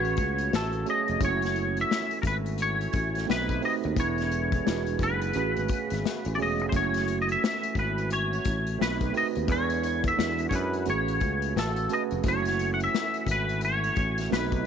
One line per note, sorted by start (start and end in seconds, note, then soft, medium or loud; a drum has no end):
0.00 0.14 A1 loud
0.00 1.19 C#3 medium
0.00 1.19 F#3 medium
0.00 0.73 A3 medium
0.00 1.19 B3 medium
0.00 0.74 C#4 medium
0.00 0.74 F#4 medium
0.00 1.19 F#4 medium
0.00 0.75 G#4 medium
0.00 0.78 B4 medium
0.00 0.55 C#5 loud
0.05 closed hi-hat soft
0.17 0.49 C#2 medium
0.17 kick medium
0.17 closed hi-hat medium
0.38 closed hi-hat medium
0.53 0.83 A1 loud
0.53 0.86 A4 medium
0.53 snare loud
0.73 closed hi-hat soft
0.86 1.16 A3 medium
0.86 1.17 C#4 medium
0.86 1.17 F#4 medium
0.86 1.17 G#4 medium
0.86 1.18 C#5 medium
0.86 closed hi-hat medium
0.90 1.20 D#5 loud
1.08 1.20 F1 medium
1.08 closed hi-hat soft
1.20 1.83 F#1 loud
1.20 3.26 E3 medium
1.20 2.40 A3 medium
1.20 3.94 A3 medium
1.20 2.41 C#4 medium
1.20 2.41 E4 medium
1.20 3.25 F#4 medium
1.20 2.41 F#4 medium
1.20 2.42 C#5 medium
1.20 kick loud
1.20 closed hi-hat medium
1.25 1.80 C#5 loud
1.42 snare soft
1.42 closed hi-hat soft
1.56 closed hi-hat medium
1.77 closed hi-hat soft
1.81 2.21 E5 loud
1.91 snare loud
2.11 closed hi-hat soft
2.22 2.86 G#1 medium
2.22 2.26 A#4 medium
2.22 kick medium
2.22 closed hi-hat medium
2.27 2.36 B4 loud
2.46 closed hi-hat medium
2.58 closed hi-hat medium
2.62 3.25 C#5 loud
2.81 closed hi-hat soft
2.93 3.25 A1 medium
2.93 kick loud
2.93 closed hi-hat medium
3.15 snare soft
3.15 closed hi-hat soft
3.26 3.60 B1 medium
3.26 3.96 C3 medium
3.26 3.57 A3 medium
3.26 3.58 C4 medium
3.26 3.96 D#4 medium
3.26 3.58 D#4 medium
3.26 3.59 F#4 medium
3.26 3.59 B4 medium
3.26 snare loud
3.31 3.61 B4 medium
3.49 kick medium
3.49 closed hi-hat soft
3.61 3.92 A3 medium
3.61 3.92 C4 medium
3.61 3.93 D#4 medium
3.61 3.93 F#4 medium
3.61 3.94 B4 medium
3.61 3.74 D#5 loud
3.61 open hi-hat soft
3.84 3.99 D#2 medium
3.84 closed hi-hat soft
3.96 4.59 E1 loud
3.96 5.33 D3 medium
3.96 4.63 G#3 medium
3.96 4.65 B3 medium
3.96 4.64 D4 medium
3.96 4.65 E4 medium
3.96 6.70 G#4 medium
3.96 4.66 B4 medium
3.96 kick loud
3.96 closed hi-hat medium
4.00 5.03 C#5 loud
4.18 snare soft
4.18 closed hi-hat soft
4.31 closed hi-hat medium
4.52 kick loud
4.52 closed hi-hat soft
4.64 4.98 E1 loud
4.64 5.26 G#3 medium
4.64 5.26 D4 medium
4.64 5.27 E4 medium
4.64 6.70 F#4 medium
4.64 5.27 F#4 medium
4.64 5.27 B4 medium
4.64 snare loud
4.87 closed hi-hat soft
4.99 5.31 F#1 loud
4.99 6.35 B4 loud
4.99 kick medium
4.99 closed hi-hat medium
5.21 closed hi-hat soft
5.33 5.54 A1 loud
5.33 6.71 C#3 medium
5.33 6.26 A3 medium
5.33 6.71 B3 medium
5.33 6.26 C#4 medium
5.33 6.26 F#4 medium
5.33 6.27 G#4 medium
5.33 6.27 B4 medium
5.33 closed hi-hat medium
5.57 5.68 G#1 medium
5.57 closed hi-hat soft
5.68 kick medium
5.68 closed hi-hat medium
5.90 6.03 G#1 medium
5.90 snare soft
5.90 closed hi-hat soft
6.05 snare loud
6.25 6.37 A1 loud
6.25 closed hi-hat soft
6.35 6.68 A3 medium
6.35 6.68 C#4 medium
6.35 6.69 F#4 medium
6.35 6.39 D5 medium
6.35 open hi-hat soft
6.39 6.61 E1 medium
6.39 6.69 G#4 medium
6.39 6.69 C#5 medium
6.39 6.69 D#5 medium
6.60 6.72 F1 medium
6.60 closed hi-hat soft
6.69 7.92 A3 medium
6.69 8.77 A3 medium
6.69 7.92 C#4 medium
6.69 8.77 F#4 medium
6.69 6.73 C5 medium
6.69 kick loud
6.69 closed hi-hat medium
6.73 7.35 F#1 loud
6.73 8.78 E3 medium
6.73 7.93 E4 medium
6.73 7.93 F#4 medium
6.73 7.94 C#5 medium
6.73 7.21 C#5 loud
6.94 snare soft
6.94 closed hi-hat soft
7.08 closed hi-hat medium
7.22 7.29 D#5 medium
7.29 7.74 E5 loud
7.29 closed hi-hat soft
7.44 snare loud
7.63 closed hi-hat soft
7.75 8.38 G#1 loud
7.75 8.10 B4 medium
7.75 kick medium
7.75 closed hi-hat medium
7.98 closed hi-hat medium
8.10 8.82 C#5 loud
8.10 closed hi-hat medium
8.33 closed hi-hat soft
8.45 8.77 A1 medium
8.45 kick loud
8.45 closed hi-hat medium
8.67 closed hi-hat medium
8.78 9.11 B1 loud
8.78 9.48 C3 medium
8.78 9.09 A3 medium
8.78 9.48 A3 medium
8.78 9.10 C4 medium
8.78 9.48 D#4 medium
8.78 9.10 D#4 medium
8.78 9.11 F#4 medium
8.78 9.11 B4 medium
8.78 9.16 B4 medium
8.78 snare loud
9.01 kick medium
9.01 closed hi-hat soft
9.12 9.44 A3 medium
9.12 9.44 C4 medium
9.12 9.44 D#4 medium
9.12 9.45 F#4 medium
9.12 9.45 B4 medium
9.12 open hi-hat soft
9.17 9.26 D#5 medium
9.35 9.49 D#2 medium
9.35 closed hi-hat soft
9.47 10.10 E2 loud
9.47 10.85 D3 medium
9.47 10.15 G#3 medium
9.47 10.85 G#3 medium
9.47 10.17 B3 medium
9.47 10.16 D4 medium
9.47 10.16 E4 medium
9.47 10.18 B4 medium
9.47 kick loud
9.47 closed hi-hat medium
9.52 10.07 C#5 medium
9.70 closed hi-hat soft
9.83 closed hi-hat medium
10.04 10.49 E5 loud
10.04 kick loud
10.04 closed hi-hat soft
10.16 10.49 E2 loud
10.16 10.78 G#3 medium
10.16 10.78 D4 medium
10.16 10.78 E4 medium
10.16 14.27 F#4 medium
10.16 10.79 F#4 medium
10.16 10.79 B4 medium
10.16 snare loud
10.38 closed hi-hat medium
10.49 10.89 F#2 loud
10.49 10.53 C#5 medium
10.49 kick medium
10.49 closed hi-hat medium
10.55 10.86 B4 medium
10.73 closed hi-hat soft
10.85 11.18 A1 loud
10.85 12.23 C#3 medium
10.85 11.77 A3 medium
10.85 12.23 A3 medium
10.85 12.23 B3 medium
10.85 11.77 C#4 medium
10.85 11.78 F#4 medium
10.85 11.78 G#4 medium
10.85 11.79 B4 medium
10.85 closed hi-hat medium
10.90 11.53 C#5 loud
11.08 closed hi-hat soft
11.20 11.52 C#2 medium
11.20 kick medium
11.20 closed hi-hat medium
11.42 closed hi-hat medium
11.56 11.87 A1 loud
11.56 11.92 A4 medium
11.56 snare loud
11.76 closed hi-hat soft
11.89 12.20 A3 medium
11.89 12.20 C#4 medium
11.89 12.21 F#4 medium
11.89 12.21 G#4 medium
11.89 12.21 B4 medium
11.89 closed hi-hat medium
11.93 12.02 D#5 medium
12.11 12.23 F1 medium
12.11 closed hi-hat soft
12.23 12.86 F#1 loud
12.23 14.29 E3 medium
12.23 13.44 A3 medium
12.23 14.29 A3 medium
12.23 13.44 C#4 medium
12.23 13.45 E4 medium
12.23 13.45 F#4 medium
12.23 12.33 C5 medium
12.23 kick loud
12.23 closed hi-hat medium
12.28 12.73 C#5 medium
12.33 13.49 C#5 medium
12.45 snare soft
12.45 closed hi-hat soft
12.59 closed hi-hat medium
12.74 12.81 F#5 medium
12.80 13.31 E5 medium
12.80 closed hi-hat soft
12.94 snare loud
13.14 closed hi-hat soft
13.27 13.89 G#1 medium
13.27 kick medium
13.27 closed hi-hat medium
13.31 13.64 B4 medium
13.49 closed hi-hat soft
13.61 14.33 C#5 loud
13.61 closed hi-hat medium
13.84 closed hi-hat soft
13.96 14.28 A1 medium
13.96 kick medium
13.96 closed hi-hat medium
14.18 snare soft
14.18 closed hi-hat medium
14.29 14.63 B1 loud
14.29 14.66 C3 medium
14.29 14.61 A3 medium
14.29 14.66 A3 medium
14.29 14.61 C4 medium
14.29 14.66 D#4 medium
14.29 14.62 D#4 medium
14.29 14.62 F#4 medium
14.29 14.62 B4 medium
14.29 14.66 B4 medium
14.29 snare loud
14.52 kick medium
14.52 closed hi-hat soft